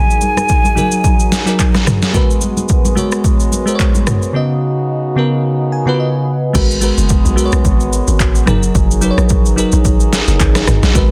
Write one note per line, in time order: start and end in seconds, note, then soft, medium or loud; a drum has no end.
0.00 0.55 F#3 medium
0.00 2.12 F#3 medium
0.00 0.55 D#4 medium
0.00 2.12 D#4 medium
0.00 0.56 G#4 medium
0.00 2.12 G#4 medium
0.00 0.56 A#4 medium
0.00 1.84 G#5 loud
0.10 shaker medium
0.21 high conga medium
0.21 shaker medium
0.37 cross-stick medium
0.37 high conga medium
0.37 shaker medium
0.49 kick medium
0.49 shaker medium
0.65 high conga medium
0.65 shaker medium
0.75 1.31 F#3 medium
0.75 1.32 D#4 medium
0.75 1.32 G#4 medium
0.75 1.33 A#4 loud
0.75 high conga medium
0.75 low conga medium
0.75 shaker medium
0.91 shaker medium
1.04 kick loud
1.04 shaker medium
1.20 shaker medium
1.32 snare medium
1.32 high conga medium
1.32 shaker loud
1.46 2.01 F#3 medium
1.46 2.02 D#4 medium
1.46 2.02 G#4 medium
1.46 2.03 A#4 medium
1.46 shaker medium
1.59 kick medium
1.59 clap medium
1.59 shaker medium
1.74 cross-stick medium
1.74 snare medium
1.74 high conga medium
1.74 shaker medium
1.87 cross-stick medium
1.87 mid tom medium
1.87 low conga medium
1.87 shaker medium
2.02 snare medium
2.02 shaker soft
2.13 2.81 G#3 medium
2.13 4.32 G#3 medium
2.13 4.32 B3 medium
2.13 6.38 F#4 medium
2.13 2.81 F#4 medium
2.13 2.82 A#4 medium
2.13 2.82 B4 loud
2.13 kick loud
2.13 low conga medium
2.13 shaker medium
2.30 shaker medium
2.41 high conga medium
2.41 shaker medium
2.57 high conga medium
2.57 shaker medium
2.69 kick medium
2.69 shaker medium
2.85 high conga medium
2.85 shaker medium
2.95 3.51 G#3 medium
2.95 3.52 F#4 medium
2.95 3.52 A#4 medium
2.95 3.53 C#5 loud
2.95 high conga medium
2.95 low conga medium
2.95 shaker medium
3.12 cross-stick medium
3.12 shaker medium
3.24 kick loud
3.24 shaker medium
3.40 shaker medium
3.52 high conga medium
3.52 shaker medium
3.66 4.21 G#3 medium
3.66 4.22 F#4 medium
3.66 4.23 A#4 medium
3.66 3.74 C5 medium
3.66 shaker medium
3.75 4.26 C#5 loud
3.79 kick medium
3.79 clap medium
3.79 shaker medium
3.94 high conga medium
3.94 shaker medium
4.07 cross-stick loud
4.07 mid tom loud
4.07 low conga medium
4.07 shaker medium
4.22 shaker soft
4.33 5.01 C#3 medium
4.33 6.38 C#3 medium
4.33 5.02 B3 medium
4.33 6.38 B3 medium
4.33 6.38 D#4 medium
4.33 5.02 F#4 medium
4.33 5.03 D#5 medium
5.16 5.71 C#3 medium
5.16 5.72 B3 medium
5.16 5.73 F#4 medium
5.16 5.73 A#4 medium
5.72 5.86 G#5 medium
5.86 6.42 C#3 medium
5.86 6.42 B3 medium
5.86 5.93 F4 medium
5.86 6.43 B4 loud
5.86 5.99 F#5 medium
5.94 6.46 F#4 medium
6.00 6.51 D#5 medium
6.53 6.92 G#1 loud
6.53 6.77 G#3 medium
6.53 8.46 G#3 medium
6.53 8.46 B3 medium
6.53 6.77 F#4 medium
6.53 8.46 F#4 medium
6.53 6.78 A#4 medium
6.53 6.78 B4 medium
6.53 kick loud
6.53 crash loud
6.53 shaker medium
6.71 shaker medium
6.81 7.27 G#3 medium
6.81 7.27 F#4 medium
6.81 7.28 A#4 medium
6.81 7.28 B4 loud
6.81 shaker medium
6.98 7.21 F#1 medium
6.98 shaker medium
7.09 kick medium
7.09 shaker medium
7.25 7.49 B1 medium
7.25 shaker medium
7.36 8.25 G#3 medium
7.36 8.26 F#4 medium
7.36 8.26 A#4 medium
7.36 7.45 B4 medium
7.36 shaker medium
7.45 8.30 C#5 loud
7.52 7.63 B1 medium
7.52 cross-stick loud
7.52 shaker medium
7.65 8.02 G#1 loud
7.65 kick loud
7.65 shaker medium
7.80 shaker medium
7.93 shaker loud
8.08 8.42 G#1 medium
8.08 shaker medium
8.20 kick loud
8.20 clap medium
8.20 shaker medium
8.35 shaker medium
8.46 8.71 F#1 loud
8.46 8.92 F#3 medium
8.46 10.93 F#3 medium
8.46 8.92 D#4 medium
8.46 10.93 D#4 medium
8.46 10.93 G#4 medium
8.46 8.93 G#4 medium
8.46 8.93 A#4 loud
8.46 cross-stick loud
8.46 mid tom loud
8.46 shaker medium
8.63 shaker medium
8.75 9.12 F#1 loud
8.75 kick loud
8.75 shaker medium
8.91 shaker medium
9.01 9.47 F#3 medium
9.01 9.47 D#4 medium
9.01 9.48 G#4 medium
9.01 9.11 B4 medium
9.01 shaker medium
9.11 9.52 C#5 loud
9.17 9.47 A#1 medium
9.17 cross-stick medium
9.17 shaker medium
9.29 kick medium
9.29 shaker medium
9.45 9.69 F#1 medium
9.45 shaker medium
9.56 10.45 F#3 medium
9.56 10.46 D#4 medium
9.56 10.47 G#4 medium
9.56 10.47 A#4 loud
9.56 shaker medium
9.72 9.86 A#1 loud
9.72 shaker medium
9.85 10.22 G#1 medium
9.85 kick loud
9.85 shaker medium
10.00 shaker medium
10.13 snare medium
10.13 shaker loud
10.28 10.38 F#1 medium
10.28 shaker medium
10.40 10.64 G#1 loud
10.40 kick loud
10.40 clap medium
10.40 shaker medium
10.55 cross-stick medium
10.55 snare medium
10.55 shaker medium
10.67 10.81 G#1 loud
10.67 cross-stick loud
10.67 mid tom loud
10.67 shaker medium
10.83 10.93 A#1 medium
10.83 snare medium
10.83 shaker medium
10.94 11.11 G#1 loud
10.94 11.11 G#3 medium
10.94 11.11 B3 medium
10.94 11.11 F#4 medium
10.94 11.11 A#4 medium
10.94 11.11 B4 medium
10.94 kick loud
10.94 shaker medium